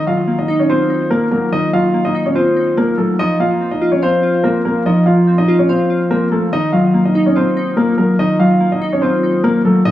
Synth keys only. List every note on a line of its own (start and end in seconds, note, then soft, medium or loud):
0.00 0.90 D#3 medium
0.07 1.11 F#3 medium
0.28 1.10 A#3 medium
0.48 0.89 D#4 loud
0.69 1.73 F4 medium
0.90 1.94 D#4 medium
1.11 1.93 A#3 loud
1.32 1.72 F#3 medium
1.52 2.57 D#3 medium
1.73 2.77 F#3 medium
1.94 2.76 A#3 medium
2.15 2.55 D#4 medium
2.36 3.19 F4 medium
2.56 3.19 D#4 medium
2.77 3.19 A#3 loud
2.98 3.19 F#3 medium
3.19 4.23 F3 loud
3.40 4.44 A#3 medium
3.61 4.43 C4 medium
3.81 4.22 F4 loud
4.02 5.07 F5 medium
4.23 5.27 F4 medium
4.44 5.26 C4 loud
4.65 5.05 A#3 medium
4.86 5.90 F3 medium
5.06 6.11 A#3 medium
5.27 6.10 C4 medium
5.48 5.89 F4 loud
5.69 6.52 F5 medium
5.90 6.52 F4 medium
6.11 6.52 C4 loud
6.32 6.53 A#3 medium
6.52 7.57 D#3 medium
6.73 7.77 F#3 medium
6.94 7.76 A#3 medium
7.15 7.55 D#4 loud
7.36 8.40 F4 medium
7.57 8.61 D#4 medium
7.77 8.59 A#3 loud
7.98 8.39 F#3 medium
8.19 9.23 D#3 medium
8.40 9.44 F#3 medium
8.61 9.43 A#3 medium
8.82 9.22 D#4 loud
9.03 9.86 F4 medium
9.23 9.86 D#4 medium
9.44 9.86 A#3 loud
9.65 9.86 F#3 medium
9.86 9.91 A#2 medium